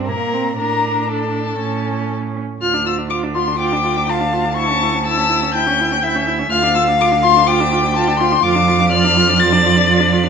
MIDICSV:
0, 0, Header, 1, 5, 480
1, 0, Start_track
1, 0, Key_signature, -1, "minor"
1, 0, Tempo, 504202
1, 559, Time_signature, 4, 2, 24, 8
1, 2956, Tempo, 484262
1, 10079, End_track
2, 0, Start_track
2, 0, Title_t, "Violin"
2, 0, Program_c, 0, 40
2, 87, Note_on_c, 0, 82, 65
2, 555, Note_off_c, 0, 82, 0
2, 560, Note_on_c, 0, 82, 68
2, 966, Note_off_c, 0, 82, 0
2, 973, Note_on_c, 0, 82, 37
2, 1049, Note_off_c, 0, 82, 0
2, 1055, Note_on_c, 0, 81, 57
2, 2014, Note_off_c, 0, 81, 0
2, 2495, Note_on_c, 0, 89, 80
2, 2711, Note_off_c, 0, 89, 0
2, 2728, Note_on_c, 0, 88, 79
2, 2804, Note_off_c, 0, 88, 0
2, 2955, Note_on_c, 0, 86, 78
2, 3034, Note_off_c, 0, 86, 0
2, 3202, Note_on_c, 0, 84, 78
2, 3434, Note_off_c, 0, 84, 0
2, 3440, Note_on_c, 0, 86, 85
2, 3935, Note_on_c, 0, 81, 81
2, 3950, Note_off_c, 0, 86, 0
2, 4400, Note_off_c, 0, 81, 0
2, 4405, Note_on_c, 0, 85, 85
2, 4882, Note_off_c, 0, 85, 0
2, 4903, Note_on_c, 0, 88, 93
2, 5370, Note_off_c, 0, 88, 0
2, 5376, Note_on_c, 0, 91, 93
2, 6083, Note_off_c, 0, 91, 0
2, 6327, Note_on_c, 0, 89, 94
2, 6554, Note_off_c, 0, 89, 0
2, 6572, Note_on_c, 0, 88, 96
2, 6652, Note_off_c, 0, 88, 0
2, 6826, Note_on_c, 0, 86, 97
2, 6905, Note_off_c, 0, 86, 0
2, 7051, Note_on_c, 0, 84, 100
2, 7287, Note_on_c, 0, 86, 99
2, 7302, Note_off_c, 0, 84, 0
2, 7768, Note_off_c, 0, 86, 0
2, 7777, Note_on_c, 0, 81, 90
2, 8000, Note_off_c, 0, 81, 0
2, 8006, Note_on_c, 0, 84, 91
2, 8237, Note_on_c, 0, 86, 103
2, 8252, Note_off_c, 0, 84, 0
2, 8714, Note_off_c, 0, 86, 0
2, 8720, Note_on_c, 0, 89, 121
2, 9192, Note_on_c, 0, 93, 108
2, 9207, Note_off_c, 0, 89, 0
2, 9914, Note_off_c, 0, 93, 0
2, 10079, End_track
3, 0, Start_track
3, 0, Title_t, "Violin"
3, 0, Program_c, 1, 40
3, 53, Note_on_c, 1, 70, 61
3, 537, Note_off_c, 1, 70, 0
3, 554, Note_on_c, 1, 70, 57
3, 1037, Note_on_c, 1, 69, 47
3, 1051, Note_off_c, 1, 70, 0
3, 2005, Note_off_c, 1, 69, 0
3, 3430, Note_on_c, 1, 79, 67
3, 3936, Note_on_c, 1, 77, 60
3, 3951, Note_off_c, 1, 79, 0
3, 4410, Note_off_c, 1, 77, 0
3, 4416, Note_on_c, 1, 81, 71
3, 4884, Note_off_c, 1, 81, 0
3, 4890, Note_on_c, 1, 81, 75
3, 5367, Note_off_c, 1, 81, 0
3, 5385, Note_on_c, 1, 79, 73
3, 5853, Note_on_c, 1, 76, 76
3, 5868, Note_off_c, 1, 79, 0
3, 6335, Note_off_c, 1, 76, 0
3, 6346, Note_on_c, 1, 77, 80
3, 7290, Note_on_c, 1, 79, 84
3, 7305, Note_off_c, 1, 77, 0
3, 8224, Note_off_c, 1, 79, 0
3, 8230, Note_on_c, 1, 77, 86
3, 8709, Note_off_c, 1, 77, 0
3, 8723, Note_on_c, 1, 74, 89
3, 10079, Note_off_c, 1, 74, 0
3, 10079, End_track
4, 0, Start_track
4, 0, Title_t, "Viola"
4, 0, Program_c, 2, 41
4, 0, Note_on_c, 2, 60, 46
4, 82, Note_on_c, 2, 58, 47
4, 96, Note_off_c, 2, 60, 0
4, 316, Note_on_c, 2, 60, 47
4, 331, Note_off_c, 2, 58, 0
4, 549, Note_off_c, 2, 60, 0
4, 554, Note_on_c, 2, 62, 41
4, 1503, Note_off_c, 2, 62, 0
4, 1516, Note_on_c, 2, 61, 46
4, 2274, Note_off_c, 2, 61, 0
4, 2486, Note_on_c, 2, 65, 52
4, 2602, Note_on_c, 2, 62, 50
4, 2616, Note_off_c, 2, 65, 0
4, 2721, Note_on_c, 2, 65, 50
4, 2735, Note_off_c, 2, 62, 0
4, 2837, Note_on_c, 2, 62, 45
4, 2851, Note_off_c, 2, 65, 0
4, 2950, Note_off_c, 2, 62, 0
4, 2956, Note_on_c, 2, 65, 54
4, 3085, Note_on_c, 2, 62, 47
4, 3100, Note_off_c, 2, 65, 0
4, 3195, Note_on_c, 2, 65, 49
4, 3210, Note_off_c, 2, 62, 0
4, 3322, Note_on_c, 2, 62, 48
4, 3337, Note_off_c, 2, 65, 0
4, 3426, Note_off_c, 2, 62, 0
4, 3432, Note_on_c, 2, 65, 55
4, 3571, Note_on_c, 2, 62, 51
4, 3586, Note_off_c, 2, 65, 0
4, 3682, Note_on_c, 2, 65, 54
4, 3697, Note_off_c, 2, 62, 0
4, 3811, Note_on_c, 2, 62, 53
4, 3826, Note_off_c, 2, 65, 0
4, 3929, Note_off_c, 2, 62, 0
4, 3934, Note_on_c, 2, 65, 52
4, 4049, Note_on_c, 2, 62, 51
4, 4064, Note_off_c, 2, 65, 0
4, 4169, Note_on_c, 2, 65, 50
4, 4184, Note_off_c, 2, 62, 0
4, 4290, Note_on_c, 2, 62, 47
4, 4305, Note_off_c, 2, 65, 0
4, 4403, Note_off_c, 2, 62, 0
4, 4409, Note_on_c, 2, 64, 54
4, 4529, Note_on_c, 2, 61, 55
4, 4544, Note_off_c, 2, 64, 0
4, 4662, Note_on_c, 2, 64, 54
4, 4677, Note_off_c, 2, 61, 0
4, 4778, Note_on_c, 2, 61, 47
4, 4793, Note_off_c, 2, 64, 0
4, 4891, Note_off_c, 2, 61, 0
4, 4897, Note_on_c, 2, 64, 59
4, 5007, Note_on_c, 2, 61, 49
4, 5022, Note_off_c, 2, 64, 0
4, 5121, Note_on_c, 2, 64, 60
4, 5136, Note_off_c, 2, 61, 0
4, 5252, Note_on_c, 2, 61, 53
4, 5267, Note_off_c, 2, 64, 0
4, 5376, Note_off_c, 2, 61, 0
4, 5385, Note_on_c, 2, 64, 58
4, 5495, Note_on_c, 2, 61, 56
4, 5509, Note_off_c, 2, 64, 0
4, 5634, Note_on_c, 2, 64, 59
4, 5649, Note_off_c, 2, 61, 0
4, 5747, Note_on_c, 2, 61, 56
4, 5762, Note_off_c, 2, 64, 0
4, 5857, Note_off_c, 2, 61, 0
4, 5863, Note_on_c, 2, 64, 59
4, 5979, Note_on_c, 2, 61, 54
4, 5994, Note_off_c, 2, 64, 0
4, 6091, Note_on_c, 2, 64, 57
4, 6106, Note_off_c, 2, 61, 0
4, 6213, Note_on_c, 2, 61, 53
4, 6228, Note_off_c, 2, 64, 0
4, 6323, Note_off_c, 2, 61, 0
4, 6329, Note_on_c, 2, 65, 61
4, 6450, Note_on_c, 2, 62, 58
4, 6465, Note_off_c, 2, 65, 0
4, 6565, Note_on_c, 2, 65, 59
4, 6580, Note_off_c, 2, 62, 0
4, 6694, Note_on_c, 2, 62, 55
4, 6709, Note_off_c, 2, 65, 0
4, 6807, Note_off_c, 2, 62, 0
4, 6813, Note_on_c, 2, 65, 63
4, 6931, Note_on_c, 2, 62, 57
4, 6946, Note_off_c, 2, 65, 0
4, 7050, Note_on_c, 2, 65, 62
4, 7065, Note_off_c, 2, 62, 0
4, 7174, Note_on_c, 2, 62, 58
4, 7189, Note_off_c, 2, 65, 0
4, 7277, Note_off_c, 2, 62, 0
4, 7283, Note_on_c, 2, 65, 67
4, 7417, Note_on_c, 2, 62, 61
4, 7432, Note_off_c, 2, 65, 0
4, 7533, Note_on_c, 2, 65, 67
4, 7547, Note_off_c, 2, 62, 0
4, 7651, Note_on_c, 2, 62, 60
4, 7666, Note_off_c, 2, 65, 0
4, 7762, Note_off_c, 2, 62, 0
4, 7768, Note_on_c, 2, 65, 62
4, 7886, Note_on_c, 2, 62, 63
4, 7901, Note_off_c, 2, 65, 0
4, 8011, Note_on_c, 2, 65, 63
4, 8026, Note_off_c, 2, 62, 0
4, 8122, Note_on_c, 2, 62, 59
4, 8137, Note_off_c, 2, 65, 0
4, 8228, Note_off_c, 2, 62, 0
4, 8234, Note_on_c, 2, 65, 72
4, 8360, Note_on_c, 2, 62, 65
4, 8375, Note_off_c, 2, 65, 0
4, 8481, Note_on_c, 2, 65, 65
4, 8496, Note_off_c, 2, 62, 0
4, 8597, Note_on_c, 2, 62, 63
4, 8612, Note_off_c, 2, 65, 0
4, 8712, Note_off_c, 2, 62, 0
4, 8718, Note_on_c, 2, 65, 70
4, 8840, Note_on_c, 2, 62, 62
4, 8855, Note_off_c, 2, 65, 0
4, 8961, Note_on_c, 2, 65, 74
4, 8976, Note_off_c, 2, 62, 0
4, 9079, Note_on_c, 2, 62, 63
4, 9094, Note_off_c, 2, 65, 0
4, 9185, Note_off_c, 2, 62, 0
4, 9191, Note_on_c, 2, 65, 74
4, 9315, Note_on_c, 2, 62, 69
4, 9330, Note_off_c, 2, 65, 0
4, 9446, Note_on_c, 2, 65, 69
4, 9461, Note_off_c, 2, 62, 0
4, 9551, Note_on_c, 2, 62, 74
4, 9566, Note_off_c, 2, 65, 0
4, 9673, Note_off_c, 2, 62, 0
4, 9679, Note_on_c, 2, 65, 71
4, 9789, Note_on_c, 2, 62, 67
4, 9804, Note_off_c, 2, 65, 0
4, 9914, Note_on_c, 2, 65, 72
4, 9928, Note_off_c, 2, 62, 0
4, 10026, Note_on_c, 2, 62, 63
4, 10041, Note_off_c, 2, 65, 0
4, 10079, Note_off_c, 2, 62, 0
4, 10079, End_track
5, 0, Start_track
5, 0, Title_t, "Cello"
5, 0, Program_c, 3, 42
5, 78, Note_on_c, 3, 46, 44
5, 560, Note_off_c, 3, 46, 0
5, 564, Note_on_c, 3, 45, 45
5, 1508, Note_off_c, 3, 45, 0
5, 1517, Note_on_c, 3, 45, 48
5, 2275, Note_off_c, 3, 45, 0
5, 2488, Note_on_c, 3, 38, 60
5, 6298, Note_off_c, 3, 38, 0
5, 6339, Note_on_c, 3, 38, 75
5, 8210, Note_off_c, 3, 38, 0
5, 8242, Note_on_c, 3, 41, 80
5, 10079, Note_off_c, 3, 41, 0
5, 10079, End_track
0, 0, End_of_file